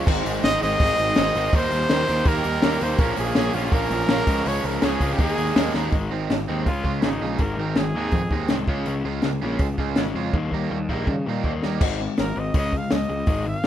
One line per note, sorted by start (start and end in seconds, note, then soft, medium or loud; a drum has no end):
0.06 0.20 G#1 medium
0.06 0.42 G#2 loud
0.06 0.43 D#3 loud
0.06 0.44 G#3 loud
0.06 0.43 C4 loud
0.06 0.45 D#4 medium
0.06 0.44 G#4 loud
0.06 0.45 C5 loud
0.06 kick loud
0.06 crash loud
0.25 0.38 G#1 medium
0.25 open hi-hat medium
0.43 0.56 G#1 medium
0.43 0.61 G#2 medium
0.43 0.61 D#3 medium
0.43 0.62 G#3 medium
0.43 0.62 C4 medium
0.43 0.63 D#4 medium
0.43 0.62 G#4 medium
0.43 0.63 C5 loud
0.43 0.61 D#5 loud
0.43 snare loud
0.43 open hi-hat medium
0.62 0.75 G#1 loud
0.62 0.80 G#2 medium
0.62 0.80 D#3 medium
0.62 0.79 G#3 medium
0.62 0.80 C4 medium
0.62 0.80 D#4 medium
0.62 0.80 G#4 medium
0.62 0.80 C5 medium
0.62 1.57 D#5 loud
0.62 open hi-hat medium
0.80 0.93 G#1 medium
0.80 1.17 G#2 medium
0.80 1.17 D#3 loud
0.80 1.16 G#3 medium
0.80 1.18 C4 loud
0.80 1.17 D#4 loud
0.80 1.17 G#4 loud
0.80 1.17 C5 loud
0.80 kick loud
0.80 open hi-hat medium
0.98 1.11 G#1 medium
0.98 open hi-hat medium
1.16 1.30 G#1 medium
1.16 1.35 G#2 medium
1.16 1.35 D#3 medium
1.16 1.34 G#3 medium
1.16 1.36 C4 medium
1.16 1.35 D#4 medium
1.16 1.35 G#4 medium
1.16 1.35 C5 medium
1.16 snare loud
1.16 open hi-hat medium
1.35 1.48 G#1 medium
1.35 1.53 G#2 medium
1.35 1.53 D#3 medium
1.35 1.53 G#3 medium
1.35 1.54 C4 loud
1.35 1.53 D#4 medium
1.35 1.53 G#4 loud
1.35 1.53 C5 loud
1.35 open hi-hat medium
1.53 1.66 D#2 medium
1.53 1.90 D#3 loud
1.53 1.91 G3 loud
1.53 1.91 A#3 loud
1.53 1.89 D#4 loud
1.53 1.91 G4 loud
1.53 1.92 A#4 loud
1.53 2.29 C5 loud
1.53 kick loud
1.53 open hi-hat medium
1.71 1.85 D#2 medium
1.71 open hi-hat medium
1.89 2.03 D#2 loud
1.89 2.07 D#3 medium
1.89 2.08 G3 medium
1.89 2.08 A#3 medium
1.89 2.08 D#4 medium
1.89 2.08 G4 medium
1.89 2.08 A#4 medium
1.89 snare loud
1.89 open hi-hat medium
2.08 2.22 D#2 loud
2.08 2.25 D#3 medium
2.08 2.26 G3 medium
2.08 2.25 A#3 medium
2.08 2.27 D#4 loud
2.08 2.26 G4 loud
2.08 2.26 A#4 medium
2.08 open hi-hat medium
2.17 snare soft
2.25 2.39 D#2 medium
2.25 2.63 D#3 loud
2.25 2.63 G3 medium
2.25 2.63 A#3 medium
2.25 2.64 D#4 loud
2.25 2.63 G4 loud
2.25 2.64 A#4 loud
2.25 2.85 A#4 loud
2.25 kick loud
2.25 open hi-hat medium
2.44 2.58 D#2 medium
2.44 open hi-hat medium
2.62 2.76 D#2 medium
2.62 2.81 D#3 loud
2.62 2.82 G3 loud
2.62 2.81 A#3 medium
2.62 2.80 D#4 loud
2.62 2.82 G4 medium
2.62 2.83 A#4 medium
2.62 snare loud
2.62 open hi-hat medium
2.81 2.94 D#2 loud
2.81 2.99 D#3 loud
2.81 2.99 G3 medium
2.81 2.99 A#3 loud
2.81 2.99 D#4 loud
2.81 3.00 G4 loud
2.81 3.00 A#4 loud
2.81 3.01 C5 loud
2.81 open hi-hat medium
2.98 3.12 A#1 medium
2.98 3.36 A#2 loud
2.98 3.37 F3 loud
2.98 3.37 A#3 loud
2.98 3.37 C#4 loud
2.98 3.38 F4 loud
2.98 3.18 A#4 medium
2.98 3.38 C#5 loud
2.98 kick loud
2.98 open hi-hat medium
3.16 3.31 A#1 medium
3.16 3.36 G#4 medium
3.16 open hi-hat medium
3.35 3.49 A#1 medium
3.35 3.55 A#2 medium
3.35 3.55 F3 medium
3.35 3.55 A#3 medium
3.35 3.56 C#4 medium
3.35 3.56 G#4 medium
3.35 snare loud
3.35 open hi-hat medium
3.39 3.56 F4 medium
3.39 3.56 C#5 loud
3.53 3.67 A#1 loud
3.53 3.73 A#2 medium
3.53 3.73 F3 medium
3.53 3.73 A#3 medium
3.53 3.74 C#4 medium
3.53 3.64 F4 medium
3.53 3.74 F4 medium
3.53 3.74 C#5 medium
3.53 open hi-hat medium
3.63 3.75 F4 medium
3.63 snare soft
3.72 3.85 A#1 loud
3.72 4.10 A#2 loud
3.72 4.10 F3 medium
3.72 4.10 A#3 loud
3.72 4.11 C#4 loud
3.72 4.11 F4 loud
3.72 4.49 A#4 loud
3.72 4.11 C#5 loud
3.72 kick loud
3.72 open hi-hat medium
3.90 4.04 A#1 medium
3.90 open hi-hat medium
4.08 4.21 A#1 medium
4.08 4.27 A#2 medium
4.08 4.28 F3 medium
4.08 4.28 A#3 medium
4.08 snare loud
4.08 open hi-hat medium
4.12 4.28 C#4 medium
4.12 4.28 F4 medium
4.12 4.28 C#5 medium
4.27 4.40 C#2 medium
4.27 4.45 C#3 loud
4.27 4.46 F3 loud
4.27 4.46 G#3 loud
4.27 4.46 C#4 medium
4.27 4.46 F4 medium
4.27 4.47 C#5 loud
4.27 kick loud
4.27 open hi-hat medium
4.45 4.58 C#2 medium
4.45 4.82 C#3 medium
4.45 4.82 F3 loud
4.45 4.83 G#3 loud
4.45 4.83 C#4 loud
4.45 4.83 F4 loud
4.45 4.67 C#5 medium
4.45 4.84 C#5 loud
4.45 open hi-hat medium
4.64 4.77 C#2 medium
4.64 4.87 A#4 medium
4.64 open hi-hat medium
4.82 4.96 C#2 medium
4.82 5.00 C#3 medium
4.82 5.00 F3 medium
4.82 5.00 G#3 medium
4.82 5.01 C#4 medium
4.82 5.01 F4 medium
4.82 5.14 G#4 medium
4.82 5.01 C#5 medium
4.82 snare loud
4.82 open hi-hat medium
5.00 5.13 C#2 medium
5.00 5.18 C#3 medium
5.00 5.18 F3 medium
5.00 5.18 G#3 medium
5.00 5.19 C#4 medium
5.00 5.19 F4 medium
5.00 5.19 C#5 medium
5.00 kick medium
5.00 open hi-hat medium
5.11 5.21 G4 medium
5.11 snare soft
5.18 5.32 D#2 loud
5.18 5.56 D#3 medium
5.18 5.56 G#3 medium
5.18 5.56 A#3 loud
5.18 5.56 D#4 loud
5.18 5.56 G#4 loud
5.18 5.57 A#4 medium
5.18 kick loud
5.18 open hi-hat medium
5.23 5.72 G#4 loud
5.38 5.51 D#2 medium
5.38 open hi-hat medium
5.56 5.69 D#2 loud
5.56 5.74 D#3 medium
5.56 5.75 G#3 medium
5.56 5.74 A#3 medium
5.56 5.75 D#4 medium
5.56 5.75 G#4 medium
5.56 5.76 A#4 loud
5.56 snare loud
5.56 open hi-hat medium
5.74 5.87 D#2 medium
5.74 5.92 D#3 medium
5.74 5.93 G#3 loud
5.74 5.92 A#3 medium
5.74 5.92 D#4 loud
5.74 5.93 G#4 loud
5.74 5.93 A#4 medium
5.74 snare medium
5.92 6.07 G#1 medium
5.92 6.10 G#2 medium
5.92 6.11 D#3 loud
5.92 6.11 G#3 medium
5.92 kick loud
5.92 open hi-hat soft
6.11 6.27 G#1 medium
6.11 6.28 G#2 medium
6.11 6.29 D#3 medium
6.11 6.36 G#3 medium
6.11 6.35 C4 medium
6.11 6.35 D#4 medium
6.30 6.45 G#1 medium
6.30 6.46 G#2 medium
6.30 6.46 D#3 medium
6.30 snare medium
6.30 open hi-hat soft
6.48 6.64 D#2 medium
6.48 6.66 G#2 medium
6.48 6.66 D#3 medium
6.48 6.66 G#3 medium
6.48 6.66 C4 medium
6.48 6.66 D#4 medium
6.66 6.81 C#2 medium
6.66 6.84 C#3 medium
6.66 6.84 G#3 medium
6.66 6.84 C#4 medium
6.66 7.03 F4 medium
6.66 kick loud
6.66 open hi-hat medium
6.84 6.99 C#2 medium
6.84 7.01 C#3 medium
6.84 7.02 G#3 medium
6.84 7.09 C#4 medium
6.84 7.08 F4 medium
6.84 kick medium
7.02 7.18 G#1 medium
7.02 7.20 C#3 medium
7.02 7.21 G#3 medium
7.02 7.21 C#4 medium
7.02 7.41 D#4 medium
7.02 snare loud
7.02 open hi-hat soft
7.21 7.36 A#1 medium
7.21 7.38 C#3 medium
7.21 7.38 G#3 medium
7.21 7.40 C#4 medium
7.21 7.40 F4 medium
7.38 7.54 G#1 medium
7.38 7.57 G#2 medium
7.38 7.57 D#3 medium
7.38 7.58 G#3 medium
7.38 7.76 A#4 medium
7.38 kick loud
7.38 open hi-hat soft
7.57 7.72 G#1 medium
7.57 7.75 G#2 medium
7.57 7.75 D#3 medium
7.57 7.83 G#3 medium
7.57 7.83 C4 medium
7.57 7.83 D#4 loud
7.75 7.91 G#1 medium
7.75 7.93 G#2 medium
7.75 7.93 D#3 medium
7.75 8.66 G#4 medium
7.75 snare loud
7.75 open hi-hat soft
7.94 8.10 D#2 medium
7.94 8.12 G#2 medium
7.94 8.13 D#3 medium
7.94 8.13 G#3 medium
7.94 8.20 C4 medium
7.94 8.20 D#4 medium
8.11 8.28 F2 medium
8.11 8.30 G#2 medium
8.11 8.30 D#3 medium
8.11 kick loud
8.11 open hi-hat soft
8.31 8.46 D#2 medium
8.31 8.48 G#2 medium
8.31 8.48 D#3 medium
8.31 8.56 G#3 medium
8.31 8.56 C4 medium
8.31 8.56 D#4 medium
8.31 kick medium
8.48 8.65 C2 medium
8.48 8.68 G#2 medium
8.48 8.68 D#3 medium
8.48 8.68 G#3 loud
8.48 snare loud
8.48 open hi-hat soft
8.68 8.83 C#2 medium
8.68 8.86 C#3 medium
8.68 8.86 G#3 medium
8.68 8.86 C#4 medium
8.68 8.92 F4 medium
8.68 kick medium
8.86 9.02 C#2 medium
8.86 9.04 C#3 medium
8.86 9.05 G#3 medium
8.86 9.05 C#4 loud
8.86 open hi-hat medium
9.04 9.20 C#2 medium
9.04 9.22 C#3 medium
9.04 9.22 G#3 medium
9.04 9.29 C#4 medium
9.04 9.29 F4 loud
9.22 9.39 C#2 medium
9.22 9.41 C#3 medium
9.22 9.41 G#3 medium
9.22 snare medium
9.22 open hi-hat soft
9.42 9.57 A#1 loud
9.42 9.60 C#3 medium
9.42 9.60 G#3 medium
9.42 9.60 C#4 medium
9.42 9.66 F4 medium
9.59 9.75 C#2 medium
9.59 9.77 C#3 medium
9.59 9.77 G#3 medium
9.59 kick loud
9.59 open hi-hat medium
9.78 9.94 C#2 medium
9.78 9.96 C#3 medium
9.78 9.96 G#3 medium
9.78 10.03 C#4 medium
9.78 10.03 F4 medium
9.78 kick medium
9.96 10.12 G#1 medium
9.96 10.15 C#3 medium
9.96 10.15 G#3 medium
9.96 10.15 C#4 medium
9.96 snare loud
9.96 open hi-hat soft
10.15 10.30 F2 medium
10.15 10.33 C#3 medium
10.15 10.33 G#3 medium
10.15 10.34 C#4 medium
10.15 10.34 F4 medium
10.33 10.49 D#2 medium
10.33 10.52 D#3 medium
10.33 10.52 G3 loud
10.33 10.52 A#3 loud
10.33 kick loud
10.52 10.67 D#2 medium
10.52 10.70 D#3 medium
10.52 10.70 G3 medium
10.52 10.77 A#3 medium
10.52 10.77 D#4 medium
10.52 kick soft
10.71 10.86 D#2 medium
10.71 10.88 D#3 medium
10.71 10.88 G3 medium
10.89 11.04 A#1 medium
10.89 11.07 D#3 medium
10.89 11.07 G3 medium
10.89 11.07 A#3 medium
10.89 11.14 D#4 medium
10.89 kick medium
11.07 11.22 C#3 medium
11.07 11.24 D#3 medium
11.07 11.24 G3 medium
11.07 kick loud
11.26 11.42 A#2 medium
11.26 11.43 D#3 medium
11.26 11.43 G3 medium
11.26 11.52 A#3 medium
11.26 11.51 D#4 medium
11.44 11.59 D#2 medium
11.44 11.62 D#3 medium
11.44 11.62 G3 medium
11.44 11.62 A#3 medium
11.44 kick medium
11.63 11.79 D#2 medium
11.63 11.80 D#3 medium
11.63 11.80 G3 medium
11.63 11.82 A#3 medium
11.63 11.82 D#4 medium
11.63 snare medium
11.81 12.06 G#1 medium
11.81 11.99 G#3 medium
11.81 11.99 C4 loud
11.81 11.99 D#4 loud
11.81 kick loud
11.81 crash loud
12.00 12.17 G#3 medium
12.00 12.17 C4 medium
12.17 12.31 G#1 medium
12.17 12.34 G#3 medium
12.17 12.35 C4 medium
12.17 12.41 A#4 medium
12.17 snare medium
12.17 open hi-hat soft
12.36 12.49 G#1 medium
12.36 12.53 G#3 medium
12.36 12.53 C4 medium
12.36 12.56 D#5 medium
12.54 12.80 C#2 medium
12.54 12.72 C#3 medium
12.54 12.72 G#3 medium
12.54 12.72 C#4 medium
12.54 kick loud
12.54 open hi-hat medium
12.58 12.79 D#5 medium
12.73 12.90 C#3 medium
12.73 12.90 G#3 medium
12.73 kick medium
12.77 12.94 F5 medium
12.90 13.05 C#2 medium
12.90 13.08 C#3 medium
12.90 13.08 G#3 medium
12.90 13.46 D#5 medium
12.90 snare loud
12.90 open hi-hat soft
13.09 13.22 C#2 medium
13.09 13.26 C#3 medium
13.09 13.26 G#3 medium
13.26 13.53 G#1 medium
13.26 13.44 G#2 medium
13.26 13.45 D#3 medium
13.26 13.46 G#3 loud
13.26 kick loud
13.26 open hi-hat medium
13.46 13.63 G#2 medium
13.46 13.63 D#3 medium
13.46 13.67 F5 medium
13.63 snare medium
13.63 open hi-hat soft